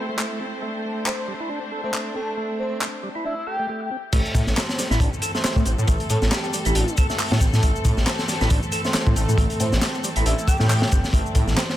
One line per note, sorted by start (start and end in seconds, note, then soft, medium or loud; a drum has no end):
0.00 3.65 A3 medium
0.00 3.65 C4 medium
0.00 0.59 E4 medium
0.00 3.65 C5 medium
0.09 0.16 A3 medium
0.18 0.39 A3 medium
0.18 clap loud
0.40 0.46 C4 medium
0.62 1.04 A3 medium
0.62 3.66 D4 medium
1.06 1.12 A3 medium
1.06 1.14 C5 medium
1.06 clap loud
1.18 1.25 C5 medium
1.28 1.34 G3 medium
1.40 1.49 E4 medium
1.50 1.59 D4 medium
1.72 1.81 A4 medium
1.84 1.91 A3 medium
1.84 1.90 C5 medium
1.93 2.15 A3 medium
1.93 2.02 C5 medium
1.93 clap loud
2.15 2.21 C4 medium
2.15 2.30 A4 medium
2.37 2.80 A3 medium
2.59 2.74 C5 medium
2.81 2.87 A3 medium
2.81 clap loud
3.03 3.09 G3 medium
3.15 3.25 E4 medium
3.25 3.35 D4 loud
3.25 3.33 E5 medium
3.37 3.44 E5 medium
3.47 3.56 A4 medium
3.47 3.69 G5 medium
3.59 3.67 A3 loud
3.69 3.90 A3 medium
3.91 3.97 C4 medium
4.13 4.21 A1 loud
4.13 11.77 E3 medium
4.13 11.77 A3 medium
4.13 4.55 A3 medium
4.13 11.77 C4 medium
4.13 11.12 A4 medium
4.13 kick loud
4.13 closed hi-hat medium
4.13 crash medium
4.13 shaker soft
4.25 shaker soft
4.34 4.42 A2 medium
4.34 kick loud
4.34 closed hi-hat medium
4.34 shaker medium
4.47 4.53 A1 loud
4.47 snare soft
4.47 shaker soft
4.57 4.62 A3 medium
4.57 4.65 C5 medium
4.57 snare loud
4.57 clap loud
4.57 closed hi-hat medium
4.57 shaker soft
4.69 4.75 C5 medium
4.69 snare medium
4.69 shaker soft
4.79 4.84 G3 medium
4.79 snare soft
4.79 closed hi-hat medium
4.79 shaker medium
4.90 4.97 A1 medium
4.90 5.00 E4 medium
4.90 snare soft
4.90 shaker soft
5.00 5.08 A1 medium
5.00 5.10 D4 loud
5.00 kick loud
5.00 closed hi-hat medium
5.00 shaker soft
5.13 shaker soft
5.22 5.32 A4 medium
5.22 closed hi-hat medium
5.22 shaker medium
5.35 5.42 A3 loud
5.35 5.41 C5 medium
5.35 snare soft
5.35 shaker soft
5.44 5.65 A3 medium
5.44 5.52 C5 medium
5.44 snare loud
5.44 clap loud
5.44 closed hi-hat medium
5.44 shaker soft
5.56 5.62 A2 loud
5.56 kick medium
5.56 shaker soft
5.65 5.74 A1 medium
5.65 5.72 C4 medium
5.65 closed hi-hat medium
5.65 shaker medium
5.78 5.85 A2 loud
5.78 shaker soft
5.88 5.96 A1 loud
5.88 6.31 A3 medium
5.88 kick loud
5.88 closed hi-hat medium
5.88 shaker soft
6.00 closed hi-hat soft
6.00 shaker soft
6.10 6.18 A2 medium
6.10 6.24 A4 medium
6.10 closed hi-hat medium
6.10 shaker medium
6.22 6.28 A1 loud
6.22 snare medium
6.22 shaker soft
6.31 6.38 A3 medium
6.31 6.94 G4 loud
6.31 snare loud
6.31 clap loud
6.31 closed hi-hat medium
6.31 shaker soft
6.44 shaker soft
6.53 6.59 G3 medium
6.53 closed hi-hat medium
6.53 shaker medium
6.65 6.72 A1 medium
6.65 6.75 E4 medium
6.65 closed hi-hat soft
6.65 shaker soft
6.75 6.83 A1 medium
6.75 6.85 D4 loud
6.75 closed hi-hat medium
6.75 shaker soft
6.88 shaker soft
6.97 7.07 A4 medium
6.97 kick medium
6.97 closed hi-hat medium
6.97 shaker medium
7.10 7.17 A3 loud
7.10 snare soft
7.10 shaker soft
7.19 7.40 A3 medium
7.19 clap loud
7.19 open hi-hat medium
7.19 shaker soft
7.31 7.38 A2 loud
7.31 snare loud
7.31 shaker soft
7.41 7.49 A1 loud
7.41 7.47 C4 medium
7.41 kick loud
7.41 closed hi-hat medium
7.41 shaker medium
7.53 7.59 A2 loud
7.53 snare soft
7.53 shaker soft
7.63 7.71 A1 medium
7.63 8.06 A3 medium
7.63 kick loud
7.63 closed hi-hat medium
7.63 shaker soft
7.75 shaker soft
7.85 7.93 A2 medium
7.85 kick loud
7.85 closed hi-hat medium
7.85 shaker medium
7.97 8.03 A1 loud
7.97 snare soft
7.97 shaker soft
8.06 8.13 A3 medium
8.06 8.15 C5 medium
8.06 snare loud
8.06 clap loud
8.06 closed hi-hat medium
8.06 shaker soft
8.19 8.25 C5 medium
8.19 snare medium
8.19 shaker soft
8.28 8.35 G3 medium
8.28 snare soft
8.28 closed hi-hat medium
8.28 shaker medium
8.41 8.47 A1 medium
8.41 8.50 E4 medium
8.41 snare soft
8.41 shaker soft
8.50 8.58 A1 medium
8.50 8.60 D4 loud
8.50 kick loud
8.50 closed hi-hat medium
8.50 shaker soft
8.62 shaker soft
8.72 8.82 A4 medium
8.72 closed hi-hat medium
8.72 shaker medium
8.85 8.92 A3 loud
8.85 8.91 C5 medium
8.85 snare soft
8.85 shaker soft
8.94 9.15 A3 medium
8.94 9.02 C5 medium
8.94 snare loud
8.94 clap loud
8.94 closed hi-hat medium
8.94 shaker soft
9.07 9.13 A2 loud
9.07 kick loud
9.07 shaker soft
9.16 9.24 A1 medium
9.16 9.22 C4 medium
9.16 9.31 A4 medium
9.16 closed hi-hat medium
9.16 shaker medium
9.29 9.35 A2 loud
9.29 shaker soft
9.37 9.46 A1 loud
9.37 9.80 A3 medium
9.37 kick loud
9.37 closed hi-hat medium
9.37 shaker soft
9.50 closed hi-hat soft
9.50 shaker soft
9.60 9.68 A2 medium
9.60 9.75 C5 medium
9.60 closed hi-hat medium
9.60 shaker medium
9.73 9.79 A1 loud
9.73 snare medium
9.73 shaker soft
9.81 9.88 A3 medium
9.81 snare loud
9.81 clap loud
9.81 closed hi-hat medium
9.81 shaker soft
9.95 shaker soft
10.04 10.10 G3 medium
10.04 closed hi-hat medium
10.04 shaker medium
10.16 10.22 A1 medium
10.16 10.26 E4 medium
10.16 closed hi-hat soft
10.16 shaker soft
10.26 10.34 A1 medium
10.26 10.35 D4 loud
10.26 10.34 E5 medium
10.26 closed hi-hat medium
10.26 shaker soft
10.38 10.44 E5 medium
10.38 shaker soft
10.48 10.57 A4 medium
10.48 10.92 G5 loud
10.48 kick loud
10.48 closed hi-hat medium
10.48 shaker medium
10.60 10.86 A2 medium
10.60 10.68 A3 loud
10.60 snare soft
10.60 shaker soft
10.69 10.91 A3 medium
10.69 clap loud
10.69 open hi-hat medium
10.69 shaker soft
10.82 snare loud
10.82 shaker soft
10.91 11.00 G1 medium
10.91 10.97 C4 medium
10.91 kick loud
10.91 closed hi-hat medium
10.91 shaker medium
11.04 snare soft
11.04 shaker soft
11.13 11.21 A1 loud
11.13 11.56 A3 medium
11.13 11.77 D4 medium
11.13 kick loud
11.13 closed hi-hat medium
11.13 shaker soft
11.26 shaker soft
11.35 11.43 A2 medium
11.35 kick loud
11.35 closed hi-hat medium
11.35 shaker medium
11.47 11.54 A1 loud
11.47 snare soft
11.47 shaker soft
11.57 11.63 A3 medium
11.57 11.65 C5 medium
11.57 snare loud
11.57 clap loud
11.57 closed hi-hat medium
11.57 shaker soft
11.69 11.76 C5 medium
11.69 snare medium
11.69 shaker soft